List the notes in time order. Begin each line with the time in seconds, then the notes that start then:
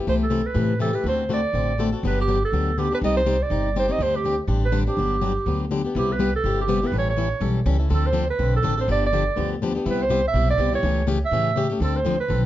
0.07 C2 C3 E3 A3 E4 G4 C5
0.23 A4
0.30 C3 E3 A3 E4 G4
0.46 B4
0.54 A2 C3 E3 A3 E4 G4
0.80 C3 E3 A3 E4 G4 A4
0.93 A3 E4 G4 B4
1.04 D2 D3 A3 C4 F#4 A4
1.08 C5
1.29 D3 A3 C4 F#4 A4
1.33 D5
1.53 A1 D3 A3 C4 F#4 A4
1.78 D3 A3 C4 F#4 A4
1.93 C4 F#4 A4
2.03 G1 D3 F#3 B3 D4 G4 B4
2.21 G4
2.28 D3 F#3 B3 D4 G4
2.45 A4
2.52 D2 D3 F#3 B3 D4 G4
2.78 D3 F#3 B3 D4 G4
2.91 B3 D4 G4 B4
3.02 C2 C3 G3 C4 D#4 G4 D5 D#5
3.17 C5
3.26 C3 G3 C4 D#4 G4 D5
3.42 D5
3.50 G1 C3 G3 C4 D#4 G4 D5
3.76 C3 G3 C4 D#4 G4 C5 D5
3.88 C4 D#4 G4 D5 D#5
3.99 D2 D3 G3 C4 D4 G4 C5
4.16 G4
4.24 D3 G3 C4 D4 G4
4.47 A1 D3 G3 C4 D4 G4
4.65 B4
4.72 D3 G3 C4 D4 G4
4.87 C4 D4 G4
4.97 G1 D3 F#3 B3 D4 G4
5.21 D3 F#3 B3 D4 G4
5.46 D2 D3 F#3 B3 D4 G4
5.71 D3 F#3 B3 D4 G4
5.85 B3 D4 G4
5.95 C2 C3 G3 B3 E4 G4
6.12 B4
6.19 C3 G3 B3 E4 G4
6.36 A4
6.44 G1 C3 G3 B3 E4 G4
6.61 G4
6.68 C3 G3 B3 E4 G4
6.82 B3 E4 G4
6.86 B4
6.92 A1 E3 G3 C#4 E4 A4
6.99 C#5
7.10 C#5
7.17 E3 G3 C#4 E4 A4
7.40 B1 E3 G3 C#4 E4 A4
7.66 C#2 E3 G3 C#4 E4 A4
7.78 C#4 E4 A4
7.89 D2 D3 F3 C4 D4 A4
7.94 A4
8.06 C5
8.13 D3 F3 C4 D4 A4
8.30 B4
8.39 B1 D3 F3 C4 D4 A4
8.56 A4
8.63 A1 D3 F3 C4 D4 A4
8.78 C4 D4 A4 C5
8.88 G1 D3 F3 B3 D4 G4 D5
9.06 D5
9.13 D3 F3 B3 D4 G4
9.36 D2 D3 F3 B3 D4 G4
9.62 D3 F3 B3 D4 G4
9.75 B3 D4 G4
9.85 C2 C3 G3 B3 E4 G4
9.90 B4
10.02 C5
10.10 C3 G3 B3 E4 G4
10.27 E5
10.34 B1 C3 G3 B3 E4 G4
10.50 D5
10.58 C2 C3 G3 B3 E4 G4
10.71 B3 E4 G4 C#5
10.83 C#2 C#3 E3 A3 C#4 G4
11.07 C#3 E3 A3 C#4 G4
11.25 E5
11.31 A2 C#3 E3 A3 C#4 G4
11.56 C#3 E3 A3 C#4 G4
11.70 A3 C#4 G4
11.80 D2 D3 F3 C4 D4 A4
11.97 C5
12.05 D3 F3 C4 D4 A4
12.20 B4
12.29 B1 D3 F3 C4 D4 A4